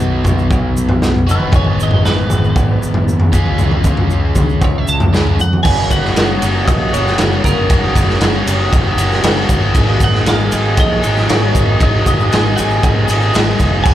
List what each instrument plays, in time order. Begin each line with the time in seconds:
Already playing: overdriven electric guitar B2 F#3 B3 D#4 F#4
0.00 fingered electric bass B1, shaker
0.24 fingered electric bass B1, kick, floor tom, mid tom, shaker
0.38 shaker
0.51 fingered electric bass B1, kick, shaker
0.77 fingered electric bass B1, shaker
0.89 floor tom
1.02 fingered electric bass B1, snare, shaker
1.14 floor tom
1.27 fingered electric bass F#1, overdriven electric guitar B2 F#3 B3 D#4 F#4, shaker
1.31 clean electric guitar B4
1.40 mid tom
1.52 fingered electric bass G#1, overdriven electric guitar G#2 D#3 G#3 B3 D#4 G#4, clean electric guitar C#5, kick, floor tom, shaker
1.65 mid tom
1.80 fingered electric bass G#1, clean electric guitar D#5, shaker
1.91 floor tom
2.05 fingered electric bass G#1, clean electric guitar B4, snare, shaker
2.30 fingered electric bass G#1, floor tom, mid tom, shaker
2.44 shaker
2.56 fingered electric bass G#1, kick, shaker
2.82 fingered electric bass G#1, shaker
2.94 floor tom
3.08 fingered electric bass D#2, shaker
3.20 floor tom
3.33 fingered electric bass C#2, overdriven electric guitar C#3 G#3 C#4 F4 G#4, kick, shaker
3.46 mid tom
3.58 fingered electric bass C#2, floor tom, shaker
3.71 mid tom
3.84 fingered electric bass C#2, kick, mid tom, shaker
3.97 floor tom
4.10 fingered electric bass C#2, shaker
4.35 fingered electric bass C#2, kick, floor tom, mid tom, shaker
4.49 shaker
4.62 fingered electric bass C#2, clean electric guitar C#5, kick, shaker
4.78 clean electric guitar E5
4.88 fingered electric bass C#2, clean electric guitar A5, shaker
5.00 floor tom, shaker
5.13 fingered electric bass C#2, overdriven electric guitar C#3 G#3 C#4 F4 G#4, snare, shaker
5.27 floor tom
5.39 fingered electric bass F2, clean electric guitar F#5, shaker
5.53 mid tom
5.63 fingered electric bass F#1, overdriven electric guitar F#2 C#3 F#3 A#3 C#4 F#4, tonewheel organ F#4 C#5 A#5 D#6, clean electric guitar G#5, kick, crash, shaker
5.91 clean electric guitar F#5, kick, ride, shaker
6.05 snare
6.16 fingered electric bass F#1, overdriven electric guitar F#3 A#3 C#4 F#4, snare, ride, shaker
6.41 fingered electric bass F#1, overdriven electric guitar F#3 A#3 C#4 F#4, ride, shaker
6.68 fingered electric bass A#1, clean electric guitar D#5, kick, ride, shaker
6.93 fingered electric bass F#1, overdriven electric guitar F#3 A#3 C#4 F#4, clean electric guitar C#5, ride, shaker
7.07 snare, shaker
7.18 fingered electric bass F#1, overdriven electric guitar F#2 C#3 F#3 A#3 C#4 F#4, snare, ride, shaker
7.44 fingered electric bass F#1, clean electric guitar A#4, kick, ride, shaker
7.70 fingered electric bass F#1, overdriven electric guitar F#2 C#3 F#3 A#3 C#4 F#4, tonewheel organ F6, kick, ride, shaker
7.95 fingered electric bass F#1, kick, ride, shaker
8.09 snare
8.21 fingered electric bass F#1, overdriven electric guitar F#3 A#3 C#4 F#4, snare, ride, shaker
8.46 fingered electric bass F#1, overdriven electric guitar F#3 A#3 C#4 F#4, ride, shaker
8.73 fingered electric bass F#1, kick, ride, shaker
8.97 fingered electric bass F#1, overdriven electric guitar F#3 A#3 C#4 F#4, ride, shaker
9.11 snare, shaker
9.22 fingered electric bass F#1, overdriven electric guitar F#2 C#3 F#3 A#3 C#4 F#4, snare, ride, shaker
9.49 fingered electric bass G1, kick, ride, shaker
9.74 fingered electric bass G#1, overdriven electric guitar G#3 A#3 D#4 G#4, tonewheel organ G#4 D#5 D#6, kick, ride, shaker
10.00 kick, ride, shaker
10.04 clean electric guitar F#5
10.15 snare
10.25 fingered electric bass G#1, overdriven electric guitar G#3 A#3 D#4 G#4, clean electric guitar F5, snare, ride, shaker
10.52 fingered electric bass G#1, overdriven electric guitar A#3 D#4 G#4, ride, shaker
10.77 fingered electric bass A#1, clean electric guitar D#5, kick, ride, shaker
11.02 fingered electric bass G#1, overdriven electric guitar A#3 D#4 G#4, ride, shaker
11.16 snare, shaker
11.28 fingered electric bass G#1, overdriven electric guitar G#3 A#3 D#4 G#4, clean electric guitar C#5, snare, ride, shaker
11.55 fingered electric bass G#1, kick, ride, shaker
11.79 fingered electric bass G#1, overdriven electric guitar G#3 A#3 D#4 G#4, clean electric guitar D#5, kick, ride, shaker
12.06 fingered electric bass G#1, clean electric guitar D#5, kick, ride, shaker
12.20 shaker
12.31 fingered electric bass G#1, overdriven electric guitar G#3 A#3 D#4 G#4, snare, ride, shaker
12.56 fingered electric bass G#1, overdriven electric guitar A#3 D#4 G#4, clean electric guitar G#5, ride, shaker
12.70 shaker
12.83 fingered electric bass G#1, kick, ride, shaker
13.07 fingered electric bass G#1, overdriven electric guitar A#3 D#4 G#4, ride, shaker
13.21 shaker
13.26 clean electric guitar F#5
13.33 fingered electric bass G#1, overdriven electric guitar G#3 A#3 D#4 G#4, snare, ride, shaker
13.59 fingered electric bass F1, kick, snare, ride, shaker
13.84 fingered electric bass F#1, overdriven electric guitar F#2 C#3 F#3 A#3 C#4 F#4, tonewheel organ F#4 C#5, clean electric guitar G#5, kick, crash, shaker